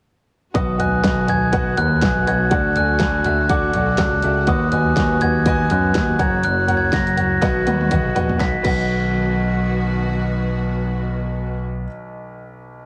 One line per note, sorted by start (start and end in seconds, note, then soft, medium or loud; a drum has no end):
0.54 1.00 B1 loud
0.54 1.24 B2 medium
0.54 2.50 D#3 medium
0.54 4.44 F#3 medium
0.54 2.50 B3 medium
0.54 0.73 F#4 medium
0.54 6.15 F#4 medium
0.54 0.73 B4 medium
0.54 0.73 D#5 medium
0.54 0.74 F#5 medium
0.54 0.66 D#6 medium
0.54 kick loud
0.54 closed hi-hat medium
0.78 0.97 F#4 medium
0.78 0.98 B4 medium
0.78 0.98 D#5 medium
0.78 0.98 G#5 medium
0.78 1.25 F#6 medium
0.78 closed hi-hat medium
0.78 floor tom medium
1.03 1.74 B1 loud
1.03 1.22 F#4 medium
1.03 1.22 B4 medium
1.03 1.22 D#5 medium
1.03 1.22 G#5 medium
1.03 kick loud
1.03 snare loud
1.03 closed hi-hat medium
1.27 1.47 F#4 medium
1.27 1.47 B4 medium
1.27 1.47 D#5 medium
1.27 1.47 G#5 medium
1.27 1.75 G#6 medium
1.27 closed hi-hat medium
1.27 floor tom medium
1.52 1.71 F#4 loud
1.52 1.71 B4 medium
1.52 1.72 D#5 medium
1.52 1.72 F#5 loud
1.52 kick loud
1.52 closed hi-hat medium
1.76 2.01 D#2 medium
1.76 1.95 F#4 medium
1.76 1.96 B4 medium
1.76 1.96 D#5 medium
1.76 1.96 F#5 medium
1.76 2.23 F#6 medium
1.76 closed hi-hat medium
1.76 floor tom medium
2.01 2.25 B1 medium
2.01 2.20 F#4 medium
2.01 2.21 B4 medium
2.01 2.21 D#5 medium
2.01 2.21 G#5 medium
2.01 kick loud
2.01 snare loud
2.01 closed hi-hat medium
2.16 floor tom medium
2.27 2.50 B1 medium
2.27 2.45 F#4 medium
2.27 2.45 B4 medium
2.27 2.46 D#5 medium
2.27 2.46 F#5 medium
2.27 2.50 G#6 medium
2.27 closed hi-hat medium
2.50 2.97 D2 loud
2.50 3.21 D3 medium
2.50 4.46 D3 medium
2.50 4.46 A3 medium
2.50 2.69 F#4 medium
2.50 2.69 A4 medium
2.50 2.70 D5 medium
2.50 2.70 F#5 medium
2.50 2.75 F#6 medium
2.50 kick loud
2.50 closed hi-hat medium
2.76 2.95 F#4 medium
2.76 2.95 A4 medium
2.76 2.95 D5 medium
2.76 2.95 G#5 medium
2.76 3.25 F#6 medium
2.76 closed hi-hat medium
2.76 floor tom medium
3.00 3.70 D2 loud
3.00 3.19 F#4 medium
3.00 3.19 A4 medium
3.00 3.19 D5 medium
3.00 3.20 G#5 medium
3.00 kick loud
3.00 snare loud
3.00 closed hi-hat medium
3.24 3.44 F#4 medium
3.24 3.44 A4 medium
3.24 3.44 D5 medium
3.24 3.44 E5 medium
3.24 3.51 F#6 medium
3.24 closed hi-hat medium
3.24 floor tom medium
3.49 3.68 F#4 loud
3.49 3.68 A4 medium
3.49 3.69 D5 medium
3.49 3.69 F#5 loud
3.49 4.01 D6 medium
3.49 kick loud
3.49 closed hi-hat medium
3.73 3.97 B1 medium
3.73 3.93 F#4 medium
3.73 3.93 A4 medium
3.73 3.94 D5 medium
3.73 3.94 A5 medium
3.73 closed hi-hat medium
3.73 floor tom medium
3.98 4.21 C#2 medium
3.98 4.17 F#4 medium
3.98 4.17 A4 medium
3.98 4.18 D5 medium
3.98 4.18 F#5 medium
3.98 4.35 F#6 medium
3.98 kick loud
3.98 snare loud
3.98 closed hi-hat medium
4.11 floor tom medium
4.22 4.46 C#2 medium
4.22 4.42 F#4 medium
4.22 4.42 A4 medium
4.22 4.42 D5 medium
4.22 4.42 E5 medium
4.22 closed hi-hat medium
4.47 4.93 D#2 loud
4.47 5.17 D#3 medium
4.47 6.18 D#3 medium
4.47 8.36 F#3 medium
4.47 6.18 B3 medium
4.47 4.66 F#4 medium
4.47 4.66 B4 medium
4.47 4.66 D#5 medium
4.47 4.67 F#5 medium
4.47 4.60 D#6 medium
4.47 kick loud
4.47 closed hi-hat medium
4.72 4.91 F#4 medium
4.72 4.91 B4 medium
4.72 4.91 D#5 medium
4.72 4.91 G#5 medium
4.72 5.18 F#6 medium
4.72 closed hi-hat medium
4.72 floor tom medium
4.96 5.67 D#2 loud
4.96 5.15 F#4 medium
4.96 5.15 B4 medium
4.96 5.16 D#5 medium
4.96 5.16 G#5 medium
4.96 kick loud
4.96 snare loud
4.96 closed hi-hat medium
5.21 5.40 F#4 medium
5.21 5.40 B4 medium
5.21 5.40 D#5 medium
5.21 5.41 F#5 medium
5.21 5.72 G#6 loud
5.21 closed hi-hat medium
5.21 floor tom medium
5.46 5.65 F#4 loud
5.46 5.65 B4 medium
5.46 5.65 D#5 medium
5.46 5.66 G#5 loud
5.46 kick loud
5.46 closed hi-hat medium
5.70 5.94 F#2 medium
5.70 5.89 F#4 medium
5.70 5.90 B4 medium
5.70 5.90 D#5 medium
5.70 5.90 G#5 medium
5.70 6.21 F#6 medium
5.70 closed hi-hat medium
5.70 floor tom medium
5.94 6.18 D#2 medium
5.94 6.13 F#4 medium
5.94 6.14 B4 medium
5.94 6.14 D#5 medium
5.94 6.14 G#5 medium
5.94 kick loud
5.94 snare loud
5.94 closed hi-hat medium
6.09 floor tom medium
6.19 6.42 F#1 medium
6.19 7.41 C#3 medium
6.19 7.41 A#3 medium
6.19 6.60 F#4 medium
6.19 7.41 F#4 medium
6.19 6.60 A#4 medium
6.19 6.60 C#5 medium
6.19 6.60 F#5 medium
6.19 6.32 G#6 medium
6.19 kick loud
6.19 closed hi-hat medium
6.43 6.90 F#1 loud
6.43 6.78 F#6 loud
6.43 closed hi-hat medium
6.67 6.87 F#4 medium
6.67 6.87 A#4 medium
6.67 6.87 C#5 medium
6.67 6.87 F#5 medium
6.67 closed hi-hat medium
6.67 floor tom medium
6.77 6.92 G#6 medium
6.92 7.39 F#1 loud
6.92 7.11 F#4 medium
6.92 7.11 A#4 medium
6.92 7.12 C#5 medium
6.92 7.12 F#5 medium
6.92 7.39 A#6 medium
6.92 kick loud
6.92 snare loud
6.92 closed hi-hat medium
7.07 closed hi-hat medium
7.16 7.36 F#4 medium
7.16 7.36 A#4 medium
7.16 7.36 C#5 medium
7.16 7.36 F#5 medium
7.16 closed hi-hat medium
7.16 floor tom medium
7.42 7.65 B1 medium
7.42 8.12 B2 medium
7.42 8.39 D#3 medium
7.42 8.39 B3 medium
7.42 7.61 F#4 loud
7.42 8.39 F#4 medium
7.42 7.61 B4 medium
7.42 7.61 D#5 medium
7.42 7.61 F#5 loud
7.42 kick loud
7.42 snare medium
7.42 closed hi-hat medium
7.66 7.90 D#2 medium
7.66 7.85 F#4 medium
7.66 7.85 B4 medium
7.66 7.85 D#5 medium
7.66 7.86 F#5 medium
7.66 closed hi-hat medium
7.66 high tom medium
7.81 high tom medium
7.91 8.14 B1 medium
7.91 8.10 F#4 medium
7.91 8.10 B4 medium
7.91 8.10 D#5 medium
7.91 8.10 F#5 medium
7.91 kick loud
7.91 closed hi-hat medium
7.91 mid tom medium
8.15 8.39 A#1 medium
8.15 8.34 F#4 medium
8.15 8.34 B4 medium
8.15 8.34 D#5 medium
8.15 8.35 F#5 medium
8.15 closed hi-hat medium
8.15 floor tom loud
8.29 floor tom medium
8.37 8.55 B1 medium
8.37 11.61 D#3 medium
8.37 11.62 F#3 medium
8.37 11.61 B3 medium
8.37 8.53 F#4 medium
8.37 11.61 F#4 medium
8.37 8.54 B4 medium
8.37 8.55 D#5 medium
8.37 8.55 B6 medium
8.37 kick loud
8.37 snare medium
8.42 8.56 F#5 medium
8.62 11.85 B1 medium
8.62 11.86 B1 medium
8.62 11.83 F#4 medium
8.62 11.84 B4 medium
8.62 11.86 D#5 medium
8.62 11.85 B6 medium
8.62 kick loud
8.62 crash medium
8.67 11.88 F#5 medium